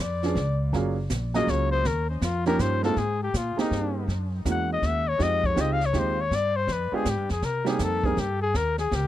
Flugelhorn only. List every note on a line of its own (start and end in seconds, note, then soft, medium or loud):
0.01 0.61 D5 medium
1.35 1.51 D#5 medium
1.50 1.71 C#5 medium
1.71 1.88 C5 medium
1.87 2.09 A#4 medium
2.10 2.24 C#4 soft
2.23 2.46 F4 medium
2.47 2.62 A#4 loud
2.61 2.84 C5 medium
2.84 2.99 A4 medium
2.98 3.21 G#4 medium
3.23 3.38 G4 medium
3.37 3.59 F4 medium
3.60 4.06 D#4 medium
4.50 4.70 F#5 medium
4.73 4.88 D#5 medium
4.86 5.10 E5 medium
5.08 5.24 C#5 medium
5.23 5.48 D#5 loud
5.46 5.62 C#5 medium
5.61 5.74 D#5 medium
5.73 5.87 F5 loud
5.86 6.01 C#5 medium
5.99 6.22 C5 medium
6.21 6.37 C#5 medium
6.35 6.58 D5 medium
6.56 6.74 C5 medium
6.72 6.97 B4 medium
6.95 7.11 G#4 medium
7.10 7.31 G4 medium
7.31 7.46 G#4 medium
7.45 7.68 A#4 medium
7.68 7.85 G#4 medium
7.83 8.07 A4 medium
8.05 8.21 G#4 medium
8.20 8.41 G4 medium
8.42 8.58 G#4 loud
8.56 8.79 A#4 medium
8.79 8.97 G#4 medium
8.95 9.07 G4 medium